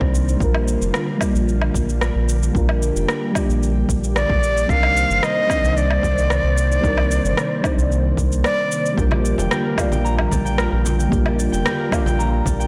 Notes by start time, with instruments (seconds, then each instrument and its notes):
Already playing: analog synth pad C3 D#3 A#3 C5, fm electric piano D#4 A#4 D5
0.00 analog synth bass C2, fm electric piano G3 C4 D4 D#4 C5, kick
0.15 shaker
0.29 shaker
0.37 analog synth bass A#1, analog synth pad D3 G3 F4, fm electric piano G3 A#3 D4, kick
0.41 fm electric piano F4 A#4, shaker
0.55 low woodblock
0.68 shaker
0.81 analog synth bass F1, shaker
0.94 cross-stick, shaker
1.17 fm electric piano G3 A#3 D4, kick, low woodblock
1.22 fm electric piano F4 D5, shaker
1.35 analog synth bass A#1, shaker
1.49 shaker
1.62 low woodblock
1.74 analog synth bass A#1, kick, shaker
1.89 shaker
2.01 cross-stick, shaker
2.15 analog synth bass A#1
2.29 shaker
2.43 shaker
2.52 analog synth bass A#1, fm electric piano G3 A#3 D4, analog synth pad G4, kick
2.56 fm electric piano F4 A#4, shaker
2.69 low woodblock
2.83 shaker
2.95 analog synth bass F1, shaker
3.08 cross-stick, shaker
3.32 fm electric piano G3 A#3 D4, kick, low woodblock
3.36 fm electric piano F4 D5, shaker
3.49 analog synth bass A#1, shaker
3.63 shaker
3.89 analog synth bass A#1, kick, shaker
4.04 shaker
4.16 flute D5, cross-stick, shaker
4.30 analog synth bass A#1, kick
4.43 shaker
4.57 shaker
4.66 analog synth bass C2, analog synth pad C3 D#3 A#3 C5, fm electric piano G3 C4 D4, flute F5, kick
4.70 fm electric piano D#4 A#4, shaker
4.83 low woodblock
4.97 shaker
5.10 analog synth bass G1, shaker
5.23 flute D#5, cross-stick, shaker
5.46 fm electric piano G3 C4 D4, kick, low woodblock
5.51 fm electric piano D#4 D5, shaker
5.63 analog synth bass C2, shaker
5.77 flute D5, shaker
5.91 low woodblock
6.03 analog synth bass C2, kick, shaker
6.18 shaker
6.30 cross-stick, shaker
6.43 analog synth bass C2
6.58 shaker
6.72 shaker
6.81 analog synth bass C2, fm electric piano G3 C4 D4, kick, shaker
6.85 fm electric piano D#4 A#4
6.98 low woodblock
7.11 shaker
7.24 analog synth bass G1, shaker
7.37 cross-stick, shaker
7.61 fm electric piano G3 C4 D4, kick, low woodblock
7.65 fm electric piano D#4 D5, shaker
7.78 analog synth bass C2, shaker
7.92 shaker
8.17 analog synth bass C2, kick, shaker
8.32 shaker
8.44 flute D5, cross-stick, shaker
8.72 shaker
8.86 shaker
8.94 analog synth bass A#1, analog synth pad D3 G3 F4, fm electric piano G3 A#3 D4, harp G4, kick
8.99 fm electric piano F4 A#4, shaker
9.11 harp D5, high conga, low woodblock
9.24 harp D5, shaker
9.38 analog synth bass F1, harp G5, low conga, shaker
9.51 harp G4, cross-stick, high conga, shaker
9.65 harp A#4
9.75 fm electric piano G3 A#3 D4, harp F5, kick, low conga, low woodblock
9.79 fm electric piano F4 D5, shaker
9.92 analog synth bass A#1, harp G5, high conga, shaker
10.04 harp A#5, shaker
10.18 harp A#5, low conga, low woodblock
10.31 analog synth bass A#1, harp D5, kick, high conga, shaker
10.45 harp G5, shaker
10.58 harp A#4, cross-stick, shaker
10.72 analog synth bass A#1, harp A#4
10.85 harp G5, high conga, shaker
10.99 harp G5, shaker
11.09 analog synth bass A#1, fm electric piano G3 A#3 D4, harp G4, kick
11.13 fm electric piano F4 A#4, shaker
11.26 harp D5, high conga, low woodblock
11.39 harp D5, shaker
11.52 analog synth bass F1, harp G5, shaker
11.65 harp G4, cross-stick, high conga, shaker
11.79 harp A#4
11.89 fm electric piano G3 A#3 D4, harp F5, kick, low conga, low woodblock
11.93 fm electric piano F4 D5, shaker
12.06 analog synth bass A#1, harp G5, high conga, shaker
12.19 harp A#5, shaker
12.33 harp A#5
12.46 analog synth bass A#1, harp D5, kick, high conga, shaker
12.60 harp G5, shaker